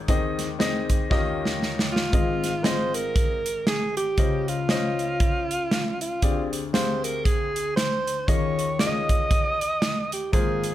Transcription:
0.08 D#2 D#3 C4 D#4 G#4 D#5, kick, closed hi-hat
0.39 snare, closed hi-hat
0.59 C4 D#4 G#4 D#5, snare, closed hi-hat
0.90 kick, closed hi-hat
1.10 D#2 D#3 C#4 F4 G4 D#5, kick, snare
1.45 snare
1.62 snare
1.79 snare
1.92 F4
1.96 snare
2.13 G#1 G#2 C4 F4 G#4 D#5, kick, closed hi-hat
2.44 snare, closed hi-hat
2.64 C4 F4 G#4 C5 D#5, snare, closed hi-hat
2.94 A#4, closed hi-hat
3.16 kick, closed hi-hat
3.46 closed hi-hat
3.67 G#4, snare, closed hi-hat
3.97 G4, closed hi-hat
4.18 C#2 C#3 C#4 F4 C5 D#5, kick, closed hi-hat
4.48 F4, closed hi-hat
4.69 C#4 F4 C5 D#5, snare, closed hi-hat
4.99 closed hi-hat
5.20 kick, closed hi-hat
5.51 closed hi-hat
5.71 snare, closed hi-hat
6.01 F4, closed hi-hat
6.22 D2 D3 C4 G4 G#4 D5, kick, closed hi-hat
6.53 closed hi-hat
6.73 C4 G4 G#4 C5 F5, snare, closed hi-hat
7.04 A#4, closed hi-hat
7.25 G#4, kick, closed hi-hat
7.56 closed hi-hat
7.76 C5, snare, closed hi-hat
8.07 closed hi-hat
8.27 D#2 D#3 C#4 F4 G#4 C#5 D#5, kick, closed hi-hat
8.59 closed hi-hat
8.79 C#4 F4 G#4 D5 D#5, snare, closed hi-hat
8.86 D#5
9.09 kick, closed hi-hat
9.31 kick, closed hi-hat
9.61 closed hi-hat
9.82 snare, closed hi-hat
10.12 G4, closed hi-hat
10.32 G#1 G#2 A#3 F4 G#4 C5, kick, closed hi-hat
10.64 closed hi-hat

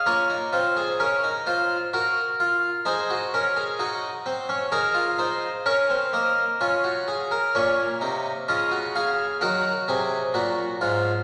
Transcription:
0.06 A#3 F4 C#5
0.30 D#4
0.53 C4 F4
0.77 G#4
1.00 C#4 A#4
1.24 D#4
1.46 F4 C5
1.93 F#4 A#4
2.40 F4
2.85 D#4 G#4 C5
3.10 F#4
3.34 C#4 A#4
3.56 G#4
3.79 D#4 F#4
4.26 C4
4.49 C#4
4.72 D#4 G#4 A#4
4.95 F4
5.19 D#4 C5
5.66 C#4 A#4 C#5
5.90 C4
6.13 A#3 D#5
6.61 C#4 F4
6.84 F#4
7.08 G#4
7.31 A#4
7.55 A#2 A#3 C#4 C#5
8.01 C3 D#4
8.48 C#3 F4 D#5
8.71 F#4
8.95 G#4 F5
9.41 D#3 F#3 A#4 F#5
9.88 C3 G#4
10.34 A#2 F#4
10.81 G#2 F4

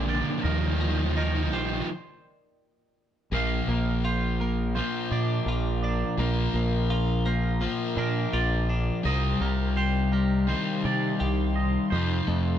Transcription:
Already playing: A#1 A#3 D4 F4 G4 A#4 D5 G5
0.05 A#2 D3 F3 D5
0.13 A#2 D3
0.21 A#2 D3
0.28 A#2 D3
0.37 A#2 D3
0.43 D#2 D#3 F3 A#4 D#5
0.52 D#3 F3
0.59 D#3 F3
0.67 D#3 F3
0.75 D#3 F3
0.81 D#3 F3 A#3
0.89 D#3 F3
0.98 D#3 F3
1.04 D#3 F3
1.13 D#3 F3
1.17 D#3 F3 D#4 A#4
1.28 D#3 F3
1.35 D#3 F3
1.43 D#3 F3
1.51 A#1 D#3 F3 G4 C5
1.58 D#3 F3
1.66 D#3 F3
1.73 D#3 F3
1.81 D#3 F3
3.31 A#1 A#2 F3 A#3 F4 A#4 F5 A#5
3.68 A#1 A#3 A#4
4.05 F4 C5
4.40 A#3 A#4
4.75 A#2 F3 A#3 C5
5.11 A#2 D4 D5
5.46 A#1 F4
5.82 D4 D5
6.18 A#1 A#2 F3 A#3 A#4
6.54 A#1 A#3
6.90 F4 A#4
7.26 A#3 C5
7.61 A#2 F3 A#3
7.97 A#2 D4 A#4
8.33 A#1 F4 D5
8.70 D4
9.03 C2 C3 G3 C4 D#4 G4 D#5 C6
9.41 C2 G3 A#4
9.77 G4 C5
10.12 G3 A#4
10.47 C3 D#3 G3 C4 C5
10.85 C3 D5
11.20 C2 G4
11.56 D#5
11.90 F2 C3 A4 C5 F5
11.94 F3
12.27 F2 A3

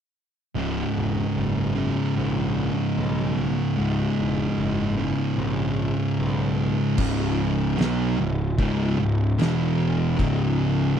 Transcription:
0.55 C#1 C#2 G#2 C#3
0.96 E1
1.36 F#1
1.75 G#2 C#3
1.79 C#2
2.16 A#1 C#2 G#2 C#3
2.97 B1
3.76 C#1 C#2 G#2 C#3
4.19 E1
4.58 F#1
4.97 C#2 G#2 C#3
5.38 A#1 C#2 G#2 C#3
6.19 B1
6.97 C#1 C#2 G#2 C#3, kick, crash
7.78 B1 B2 F#3 B3, snare, crash
8.18 C#1 C#2 G#2
8.58 C#1 C#2 G#2 C#3, kick, crash
8.98 C#1 C#2 G#2
9.38 E1 E2 B2 E3, snare, crash
10.18 C#1 C#2 G#2 C#3, kick, crash

